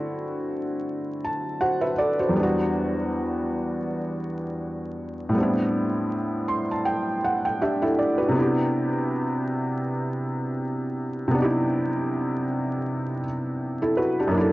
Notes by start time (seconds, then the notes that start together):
Already playing: D3 A3 C4 E4 F#4
1.24 A5
1.61 F#4 C5 F#5
1.81 B4 E5
1.98 A4 D5
2.20 F#4 C5
2.29 E2 G3
2.36 B3 D4
2.43 F#4
5.29 A2 G3
5.34 B3 C4
5.40 D4 E4
6.48 C6
6.71 A5
6.85 G5
7.24 F#5
7.45 G5
7.61 D4 G4 E5
7.82 E4 A4 E5
7.99 D5
8.18 F#4 B4
8.29 C3 B3
8.35 D4 E4
8.42 G4
11.28 C3 B3
11.35 D4 D#4
11.42 E4 G4
13.82 E4 A4
13.97 F#4 B4
14.19 D4 G4
14.27 F#2 A#3
14.34 D4 E4
14.41 A4